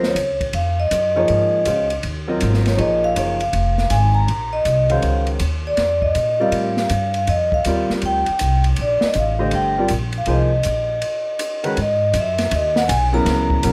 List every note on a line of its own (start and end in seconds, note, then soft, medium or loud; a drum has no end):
0.00 0.14 D#2 medium
0.00 0.15 F#3 medium
0.00 0.15 C4 medium
0.00 0.15 F4 medium
0.00 0.15 A#4 medium
0.00 0.16 D#5 medium
0.00 snare soft
0.06 0.40 C#5 medium
0.15 0.52 C#2 medium
0.15 hi-hat pedal soft
0.15 ride medium
0.41 kick soft
0.41 ride soft
0.53 0.90 F2 medium
0.53 0.80 F5 medium
0.53 ride soft
0.80 1.15 D#5 medium
0.91 1.28 F#2 medium
0.91 hi-hat pedal soft
0.91 ride medium
1.16 1.64 F3 medium
1.16 1.64 A#3 medium
1.16 1.64 D#4 medium
1.16 1.64 G#4 medium
1.16 1.64 C#5 medium
1.16 1.87 D#5 medium
1.28 1.66 G#2 medium
1.28 ride soft
1.65 2.03 C#2 medium
1.65 1.88 G#3 soft
1.65 1.88 C#4 soft
1.65 1.88 F#4 soft
1.65 1.89 C5 soft
1.65 1.89 F5 soft
1.65 hi-hat pedal soft
1.65 ride medium
1.90 ride soft
2.03 2.40 D#2 medium
2.03 ride soft
2.27 2.76 F#3 medium
2.27 2.76 C4 medium
2.27 2.76 F4 soft
2.27 2.76 A#4 soft
2.27 2.76 D#5 medium
2.40 2.78 G#1 medium
2.40 hi-hat pedal soft
2.40 ride medium
2.54 snare soft
2.66 2.72 C#5 medium
2.66 snare soft
2.66 ride soft
2.76 3.15 A#1 medium
2.76 3.14 F3 medium
2.76 3.14 A#3 soft
2.76 3.14 D#4 soft
2.76 3.15 G#4 soft
2.76 3.15 C#5 medium
2.76 3.04 D#5 medium
2.76 ride soft
3.04 3.39 F5 medium
3.16 3.52 F#1 medium
3.16 3.38 F3 soft
3.16 3.38 A#3 soft
3.16 3.39 D#4 soft
3.16 3.39 G#4 soft
3.16 3.39 C#5 soft
3.16 hi-hat pedal soft
3.16 ride medium
3.40 3.75 F5 medium
3.40 ride soft
3.53 3.90 F1 medium
3.53 ride medium
3.78 3.92 F5 medium
3.78 snare soft
3.90 4.27 G#1 medium
3.90 4.16 G#5 medium
3.90 hi-hat pedal soft
3.90 ride medium
4.14 4.54 A#5 medium
4.28 4.65 A#1 medium
4.28 ride soft
4.53 4.92 D#5 medium
4.65 5.02 C2 medium
4.65 hi-hat pedal soft
4.65 ride soft
4.90 5.38 D#3 medium
4.90 5.38 G#3 medium
4.90 5.39 C#4 medium
4.90 5.39 F#4 medium
4.90 5.39 C5 medium
4.90 5.25 F5 medium
4.90 ride soft
5.02 5.39 C#2 medium
5.02 ride soft
5.27 ride soft
5.39 5.77 D#2 medium
5.39 hi-hat pedal soft
5.39 ride medium
5.67 6.05 D5 medium
5.77 6.14 F2 medium
5.77 snare soft
5.77 ride soft
6.02 6.29 D#5 medium
6.02 kick soft
6.15 6.51 A#2 medium
6.15 hi-hat pedal soft
6.15 ride soft
6.31 6.40 D#5 medium
6.40 6.88 G3 medium
6.40 6.88 C4 medium
6.40 6.88 F4 soft
6.40 6.88 A#4 soft
6.40 6.88 D5 medium
6.40 6.78 F5 medium
6.52 6.89 A2 medium
6.52 ride soft
6.77 7.15 F5 medium
6.77 snare soft
6.89 7.27 G2 medium
6.89 hi-hat pedal soft
6.89 ride medium
7.14 7.28 F5 medium
7.14 ride soft
7.27 7.64 F2 medium
7.27 7.54 D#5 medium
7.27 ride soft
7.52 7.88 F5 medium
7.52 kick medium
7.64 7.88 D#2 medium
7.64 8.23 G3 medium
7.64 8.23 C4 soft
7.64 8.23 F4 soft
7.64 8.23 A#4 soft
7.64 8.23 D5 medium
7.64 hi-hat pedal soft
7.64 ride medium
7.90 muted upright bass stroke soft
7.90 snare soft
8.02 8.25 D2 medium
8.02 ride soft
8.06 8.62 G5 medium
8.26 muted upright bass stroke soft
8.26 ride soft
8.39 8.77 C2 medium
8.39 hi-hat pedal medium
8.39 ride medium
8.64 ride soft
8.76 9.01 A#1 medium
8.76 ride soft
8.81 9.05 D5 medium
9.01 muted upright bass stroke soft
9.01 snare soft
9.05 9.16 D#5 medium
9.13 9.51 A1 medium
9.13 hi-hat pedal soft
9.13 ride soft
9.19 9.55 F5 medium
9.39 9.74 D3 medium
9.39 9.74 A3 medium
9.39 9.74 G4 medium
9.39 9.74 C5 medium
9.39 9.75 D#5 medium
9.51 9.89 G1 medium
9.51 9.89 G5 medium
9.51 ride soft
9.78 9.89 G3 medium
9.78 9.89 C4 soft
9.78 9.89 F4 medium
9.78 9.89 A#4 soft
9.78 9.89 D5 medium
9.88 10.26 A#1 medium
9.88 hi-hat pedal soft
9.88 ride medium
10.12 ride soft
10.18 10.29 F5 medium
10.26 10.63 C2 medium
10.26 10.49 F3 soft
10.26 10.49 A#3 soft
10.26 10.49 D#4 soft
10.26 10.49 G#4 medium
10.26 10.49 C5 medium
10.26 ride soft
10.30 11.61 D#5 medium
10.63 11.01 A#1 medium
10.63 hi-hat pedal medium
10.63 ride soft
11.02 ride medium
11.39 hi-hat pedal medium
11.39 ride medium
11.64 11.75 D#3 medium
11.64 11.76 G#3 medium
11.64 11.76 C#4 medium
11.64 11.76 F#4 medium
11.64 11.76 B4 medium
11.64 ride soft
11.77 12.13 G#2 medium
11.77 ride medium
11.82 12.14 D#5 medium
12.13 12.50 F#2 medium
12.13 hi-hat pedal medium
12.13 ride medium
12.19 12.55 E5 medium
12.38 snare soft
12.38 ride soft
12.51 12.88 D#2 medium
12.51 12.78 D#5 medium
12.51 ride medium
12.76 12.88 F#5 medium
12.76 snare soft
12.88 13.25 B1 medium
12.88 12.99 G#5 medium
12.88 hi-hat pedal medium
12.88 ride medium
13.12 13.60 C#3 medium
13.12 13.60 F#3 medium
13.12 13.61 B3 medium
13.12 13.61 E4 medium
13.12 13.61 A#4 medium
13.12 13.72 A#5 medium
13.25 13.62 C#2 medium
13.25 snare soft
13.25 ride medium
13.50 kick medium
13.63 13.72 B1 medium
13.63 13.72 C#3 medium
13.63 13.72 F#3 soft
13.63 13.72 B3 medium
13.63 13.72 E4 soft
13.63 13.72 A#4 medium
13.63 hi-hat pedal medium
13.63 ride medium